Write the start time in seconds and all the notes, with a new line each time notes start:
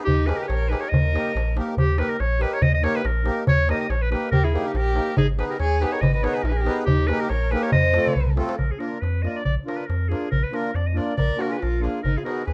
0.04 D#2 D#4 G4, darbuka dum
0.26 A#3 D#4 G4 G#4 A#4 B4, darbuka tek
0.37 G4 A#4
0.43 G4 G#4 B4
0.48 A#1 A#4 C#5, darbuka tek
0.68 A#3 D#4 G4 G#4 A#4 B4
0.73 darbuka tek
0.80 A#4 C#5
0.89 D#2 A#4 D#5
0.94 darbuka dum
1.13 A#3 D#4 G4 A#4, darbuka tek
1.27 darbuka tek
1.35 A#1, darbuka tek
1.48 darbuka tek
1.56 A#3 D#4 G4 A#4, darbuka tek
1.68 darbuka tek
1.77 D#2 G4, darbuka dum
1.97 A#3 D#4 G4 A#4 B4, darbuka tek
2.09 A#4
2.20 A#1 C#5, darbuka tek
2.40 A#3 D#4 G4 A#4 B4, darbuka tek
2.53 C#5
2.61 D#2 D#5, darbuka dum
2.74 D#5
2.82 A#3 D#4 G4 A#4 C#5, darbuka tek
2.96 B4
3.05 A#1 A#4, darbuka tek
3.25 A#3 D#4 G4 A#4, darbuka tek
3.47 D#2 C#5, darbuka dum
3.68 A#3 D#4 G4 A#4 D#5, darbuka tek
3.80 D#5
3.90 A#1 C#5, darbuka tek
4.02 B4
4.11 A#3 D#4 G4 A#4 B4, darbuka tek
4.31 D#2 G4 A#4, darbuka dum
4.44 E4 G#4, darbuka tek
4.52 A#3 D#4 G4 A#4, darbuka tek
4.66 D#4 G4, darbuka tek
4.74 A#1 G4 A#4, darbuka tek
4.94 A#3 D#4 G4 A#4, darbuka tek
5.07 darbuka tek
5.17 G#1 D#4 G#4, darbuka dum
5.38 B3 D#4 G#4 B4, darbuka tek
5.50 G4 A#4
5.60 D#2 G#4 C#5, darbuka tek
5.80 B3 D#4 G4 G#4 B4, darbuka tek
5.86 G#4
5.92 A#4 C#5
6.01 G#1 B4 D#5, darbuka dum
6.14 B4 D#5
6.22 B3 D#4 G#4 A#4 B4 C#5, darbuka tek
6.34 G#4 B4
6.43 A#1 D#4 A#4, darbuka tek
6.49 G#4 B4
6.57 G4 A#4
6.65 B3 D#4 G#4 B4, darbuka tek
6.85 D#2 D#4 G4, darbuka dum
7.07 A#3 D#4 G4 G#4 B4, darbuka tek
7.12 A#4
7.20 G4 A#4
7.29 A#1 A#4 C#5, darbuka tek
7.51 A#3 D#4 G4 G#4 A#4 B4, darbuka tek
7.62 A#4 C#5
7.72 F2 C5 D#5, darbuka dum
7.85 darbuka tek
7.94 A3 C4 F4 A4, darbuka tek
8.07 darbuka dum
8.16 C2, darbuka dum
8.27 darbuka dum
8.36 A3 C4 F4 A4, darbuka tek
8.49 darbuka tek
8.57 A#1 A#4, darbuka dum
8.71 G#4
8.79 A#3 D4 F4 A#4, darbuka tek
8.93 darbuka tek
9.01 F2 B4, darbuka tek
9.15 darbuka tek
9.22 A#3 D4 F4 A#4 D#5, darbuka tek
9.26 D5 D#5
9.35 D5
9.45 A#1 D5, darbuka dum
9.65 A#3 D4 F4 A#4, darbuka tek
9.76 B4
9.80 darbuka tek
9.86 F2 A#4, darbuka tek
10.02 darbuka tek
10.09 A#3 D4 F4 G#4 A#4, darbuka tek
10.31 A#1 A#4, darbuka dum
10.43 B4
10.51 A#3 D4 F4 A#4, darbuka tek
10.66 darbuka tek
10.74 F2 D5, darbuka tek
10.87 D#5, darbuka tek
10.93 A#3 D4 F4 A#4 D5, darbuka tek
11.18 A#1 A#4 D5, darbuka dum
11.31 darbuka tek
11.35 A#3 D4 F4 F#4 A#4
11.41 A#4, darbuka tek
11.50 G#4 B4
11.60 A#1 F4 A#4, darbuka tek
11.75 darbuka tek
11.79 A#3 D4 F4 G#4 A#4
11.84 darbuka tek
11.96 darbuka tek
12.03 G#1 D#4 A#4, darbuka dum
12.17 F4 G#4
12.23 B3 D#4 F#4 G#4 A#4 B4, darbuka tek
12.38 darbuka tek
12.47 D#2 G#4 B4, darbuka tek